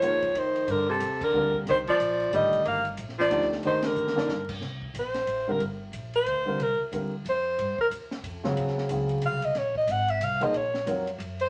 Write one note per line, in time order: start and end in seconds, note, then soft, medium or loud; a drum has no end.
0.00 0.33 D#2 medium
0.00 0.37 F3 medium
0.00 0.20 F3 medium
0.00 0.20 A#3 medium
0.00 0.21 D#4 medium
0.00 0.21 G#4 soft
0.00 0.21 C5 medium
0.00 0.39 C#5 loud
0.00 hi-hat pedal medium
0.00 ride medium
0.22 kick medium
0.22 ride soft
0.34 0.66 F2 medium
0.34 0.70 D#3 medium
0.34 ride medium
0.38 0.73 C5 medium
0.56 ride soft
0.67 0.99 G2 medium
0.67 0.88 D3 medium
0.67 ride medium
0.71 0.90 A#4 loud
0.89 1.24 C3 medium
0.89 1.26 A4 medium
1.00 1.32 D#2 medium
1.00 hi-hat pedal medium
1.00 ride medium
1.21 1.55 D3 medium
1.21 1.57 A#4 loud
1.21 kick medium
1.21 crash medium
1.33 1.64 D2 medium
1.33 1.83 D3 medium
1.33 1.83 G3 medium
1.33 1.83 C4 medium
1.33 1.83 F4 medium
1.33 1.84 A#4 medium
1.54 kick medium
1.65 1.98 C2 medium
1.65 1.77 D#3 medium
1.65 snare soft
1.65 ride medium
1.70 1.78 C5 loud
1.87 2.30 F3 medium
1.87 2.31 D5 medium
1.87 kick soft
1.87 ride soft
1.99 2.30 A#1 medium
1.99 hi-hat pedal medium
1.99 ride medium
2.20 ride soft
2.31 2.44 A1 medium
2.31 2.81 D3 soft
2.31 2.81 D#3 medium
2.31 2.63 G3 medium
2.31 2.81 A3 medium
2.31 2.81 G4 medium
2.31 2.82 C5 medium
2.31 hi-hat pedal medium
2.31 ride medium
2.36 2.65 D#5 loud
2.42 2.52 G1 medium
2.53 2.64 D#1 medium
2.53 ride soft
2.65 2.96 G1 medium
2.65 2.84 A#3 medium
2.65 2.85 F5 loud
2.65 ride medium
2.85 ride soft
2.97 3.29 A#1 medium
2.97 hi-hat pedal medium
2.97 ride medium
3.09 snare soft
3.19 3.49 F3 medium
3.19 3.50 D5 loud
3.19 snare soft
3.30 3.62 D2 medium
3.30 3.62 A3 medium
3.30 3.63 D4 medium
3.30 3.79 D#4 medium
3.30 3.63 G4 medium
3.30 3.64 C5 medium
3.30 ride medium
3.42 snare soft
3.52 snare soft
3.63 3.95 D#2 medium
3.63 4.12 D#3 medium
3.63 3.88 D#3 medium
3.63 4.12 A3 medium
3.63 4.13 D4 medium
3.63 4.13 G4 medium
3.63 4.13 C5 medium
3.63 3.88 C5 loud
3.63 ride medium
3.82 4.50 D3 medium
3.82 4.51 A#4 medium
3.82 snare medium
3.82 ride medium
3.95 4.27 F2 medium
3.95 hi-hat pedal medium
4.07 snare medium
4.16 4.27 F3 medium
4.16 4.28 A#3 medium
4.16 4.28 D#4 medium
4.16 4.28 A4 medium
4.16 4.28 D5 medium
4.16 snare medium
4.28 4.60 G2 medium
4.28 snare medium
4.49 kick medium
4.49 crash medium
4.61 4.93 C2 medium
4.61 snare soft
4.82 kick medium
4.94 5.26 A#1 medium
4.94 hi-hat pedal medium
4.94 ride medium
4.99 5.53 C5 medium
5.14 snare soft
5.14 ride soft
5.27 5.58 A1 medium
5.27 ride medium
5.47 5.59 D3 medium
5.47 5.59 G3 medium
5.47 5.59 C4 medium
5.47 5.60 F4 medium
5.47 5.60 A#4 medium
5.51 5.62 A#4 medium
5.59 5.91 G1 medium
5.59 ride medium
5.92 6.25 A#1 medium
5.92 hi-hat pedal medium
5.92 ride medium
6.14 6.64 C5 loud
6.14 ride soft
6.26 6.58 D2 medium
6.26 ride medium
6.45 6.57 D3 medium
6.45 6.58 G3 medium
6.45 6.58 C4 medium
6.45 6.58 F4 medium
6.45 6.58 A#4 medium
6.58 6.77 C2 medium
6.58 ride medium
6.63 6.81 A#4 medium
6.79 muted upright bass stroke soft
6.92 7.24 D#2 medium
6.92 7.10 D3 medium
6.92 7.10 G3 soft
6.92 7.11 C4 soft
6.92 7.11 F4 soft
6.92 7.11 A#4 medium
6.92 hi-hat pedal soft
6.92 ride medium
7.25 7.57 F2 medium
7.25 ride medium
7.29 7.77 C5 medium
7.58 7.77 G2 medium
7.58 ride medium
7.78 7.88 A#4 medium
7.78 muted upright bass stroke soft
7.78 kick medium
7.90 8.22 D#2 medium
7.90 hi-hat pedal medium
7.90 ride medium
8.11 snare medium
8.23 8.55 F2 medium
8.23 ride medium
8.44 8.87 C#3 medium
8.44 8.88 F#3 medium
8.44 8.88 C4 medium
8.44 8.88 F4 medium
8.44 8.88 G#4 medium
8.44 snare medium
8.57 8.89 D#2 medium
8.57 ride medium
8.68 snare soft
8.78 snare soft
8.89 9.21 C#2 medium
8.89 9.39 C#3 medium
8.89 9.39 F#3 medium
8.89 9.39 C4 medium
8.89 9.39 F4 medium
8.89 9.39 G#4 medium
8.89 hi-hat pedal soft
8.89 ride medium
9.09 ride soft
9.22 9.54 C2 medium
9.22 ride medium
9.26 9.47 F5 medium
9.42 9.60 D#5 medium
9.42 ride medium
9.55 9.87 A#1 medium
9.55 9.77 C#5 medium
9.55 snare soft
9.55 ride medium
9.75 9.93 D#5 medium
9.75 kick medium
9.87 10.20 G#1 medium
9.87 hi-hat pedal medium
9.87 ride medium
9.92 10.12 F#5 loud
10.08 10.25 E5 loud
10.08 ride soft
10.20 10.52 C2 medium
10.20 10.45 F5 loud
10.20 hi-hat pedal medium
10.20 ride medium
10.40 10.52 F3 medium
10.40 10.53 A#3 medium
10.40 10.53 D#4 medium
10.40 10.53 G#4 medium
10.40 10.53 C5 medium
10.40 10.58 D#5 loud
10.40 ride soft
10.53 10.85 A#1 medium
10.53 ride medium
10.57 10.88 C#5 medium
10.74 snare medium
10.86 11.18 F2 medium
10.86 11.05 F#3 medium
10.86 11.05 C4 medium
10.86 11.05 F4 medium
10.86 11.05 A#4 medium
10.86 11.06 C#5 medium
10.86 hi-hat pedal medium
10.86 ride medium
11.07 ride soft
11.18 11.49 F#2 medium
11.18 ride medium
11.40 11.49 C5 medium
11.40 ride soft